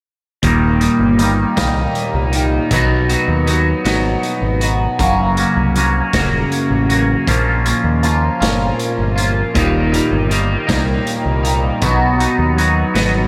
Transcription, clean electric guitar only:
0.43 1.19 D#2 medium
0.43 1.19 A#2 medium
0.43 0.81 D#3 medium
0.43 0.80 G3 medium
0.43 0.80 A#3 medium
0.43 0.80 D#4 medium
0.80 1.17 D#3 soft
0.80 1.17 G3 medium
0.80 1.18 A#3 medium
0.80 1.20 D#4 medium
1.18 1.56 D#3 medium
1.18 1.56 G3 medium
1.18 1.55 A#3 medium
1.18 1.55 D#4 medium
1.56 2.70 D#2 medium
1.56 2.69 A#2 medium
1.56 2.33 D#3 medium
1.56 2.33 G3 medium
1.56 2.32 A#3 medium
1.56 2.31 D#4 medium
2.32 2.69 D#3 medium
2.32 2.69 G3 medium
2.32 2.69 A#3 medium
2.32 2.68 D#4 medium
2.71 3.47 B2 medium
2.71 3.46 F#3 medium
2.71 3.10 B3 medium
2.71 3.09 D#4 medium
2.71 3.09 F#4 medium
3.09 3.46 B3 soft
3.09 3.47 D#4 medium
3.09 3.48 F#4 medium
3.46 3.85 F#3 medium
3.46 3.85 B3 medium
3.46 3.84 D#4 medium
3.46 3.83 F#4 medium
3.85 4.98 B2 medium
3.85 4.98 F#3 medium
3.85 4.62 B3 medium
3.85 4.60 D#4 medium
3.85 4.60 F#4 medium
4.61 4.98 B3 medium
4.61 4.97 D#4 medium
4.61 4.97 F#4 medium
4.99 5.75 F#2 medium
4.99 5.75 C#3 medium
4.99 5.39 F#3 medium
4.99 5.39 A#3 medium
4.99 5.38 C#4 medium
4.99 5.36 F#4 medium
5.37 5.75 F#3 soft
5.37 5.76 A#3 medium
5.37 5.77 C#4 medium
5.37 5.77 F#4 medium
5.76 6.15 F#3 medium
5.76 6.15 A#3 medium
5.76 6.13 C#4 medium
5.76 6.13 F#4 medium
6.14 7.26 F#2 medium
6.14 7.26 C#3 medium
6.14 6.91 F#3 medium
6.14 6.91 A#3 medium
6.14 6.89 C#4 medium
6.14 6.88 F#4 medium
6.89 7.26 F#3 soft
6.89 7.28 A#3 soft
6.89 7.26 C#4 medium
6.89 7.25 F#4 medium
7.27 8.03 A#2 medium
7.27 8.02 F3 medium
7.27 7.67 A#3 medium
7.27 7.65 C#4 medium
7.27 7.64 F4 loud
7.65 8.03 A#3 soft
7.65 8.03 C#4 medium
7.65 8.04 F4 medium
8.02 8.41 F3 medium
8.02 8.40 A#3 medium
8.02 8.40 C#4 medium
8.02 8.39 F4 medium
8.40 9.53 A#2 medium
8.40 9.53 F3 medium
8.40 9.17 A#3 medium
8.40 9.16 C#4 medium
8.40 9.14 F4 medium
9.16 9.53 A#3 medium
9.16 9.52 C#4 medium
9.16 9.52 F4 medium
9.54 10.30 D#2 medium
9.54 10.30 A#2 medium
9.54 9.93 D#3 medium
9.54 9.92 G3 medium
9.54 9.92 A#3 medium
9.54 9.91 D#4 medium
9.92 10.28 D#3 medium
9.92 10.29 G3 medium
9.92 10.30 A#3 soft
9.92 10.31 D#4 medium
10.29 10.67 D#3 medium
10.29 10.67 G3 medium
10.29 10.67 A#3 medium
10.29 10.66 D#4 medium
10.67 11.80 D#2 medium
10.67 11.80 A#2 medium
10.67 11.44 D#3 medium
10.67 11.43 G3 medium
10.67 11.42 A#3 medium
10.67 11.42 D#4 medium
11.43 11.80 D#3 soft
11.43 11.80 G3 medium
11.43 11.79 A#3 medium
11.43 11.79 D#4 medium
11.81 12.57 B2 medium
11.81 12.56 F#3 medium
11.81 12.20 B3 medium
11.81 12.19 D#4 medium
11.81 12.18 F#4 loud
12.19 12.56 B3 soft
12.19 12.57 D#4 medium
12.19 12.58 F#4 medium
12.56 12.95 F#3 medium
12.56 12.94 B3 medium
12.56 12.94 D#4 medium
12.56 12.93 F#4 medium
12.94 13.28 B2 medium
12.94 13.28 F#3 medium
12.94 13.28 B3 medium
12.94 13.28 D#4 medium
12.94 13.28 F#4 medium

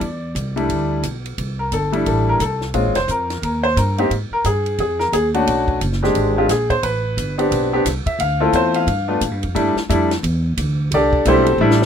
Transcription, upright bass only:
0.01 0.34 E2 medium
0.35 0.68 C2 medium
0.69 1.02 D2 medium
1.03 1.36 B1 medium
1.38 1.71 C2 medium
1.72 2.05 G1 medium
2.06 2.39 A1 medium
2.40 2.73 C2 medium
2.74 2.85 A#1 medium
2.85 2.96 G#1 medium
2.96 3.07 F1 medium
3.08 3.41 F2 medium
3.42 3.75 D#2 medium
3.76 4.09 G2 medium
4.10 4.30 G#2 medium
4.31 muted upright bass stroke soft
4.45 4.77 G2 medium
4.79 5.11 F2 medium
5.12 5.45 D#2 medium
5.47 5.80 B1 medium
5.81 6.14 F#1 medium
6.15 6.48 G#1 medium
6.49 6.82 A#1 medium
6.83 7.16 A1 medium
7.17 7.50 G1 medium
7.51 7.84 B1 medium
7.85 8.05 C2 medium
8.06 muted upright bass stroke soft
8.19 8.52 D2 medium
8.53 8.86 E2 medium
8.87 9.20 G2 medium
9.21 9.31 A2 medium
9.31 9.43 G2 medium
9.43 9.54 F2 medium
9.55 9.75 G2 medium
9.75 muted upright bass stroke soft
9.89 10.22 F2 medium
10.23 10.56 E2 medium
10.57 10.90 D2 medium
10.91 11.24 C2 medium
11.25 11.58 B1 loud
11.58 11.85 A1 medium

